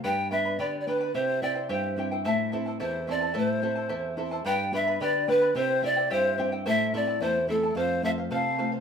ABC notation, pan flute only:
X:1
M:2/4
L:1/16
Q:1/4=109
K:Am
V:1 name="Pan flute"
g2 e2 d3/2 d/2 B2 | c2 d2 c3 z | e2 z2 c2 d2 | c6 z2 |
g2 e2 d2 B2 | c2 d2 c3 z | e2 d2 c2 A2 | c2 e2 f3 z |]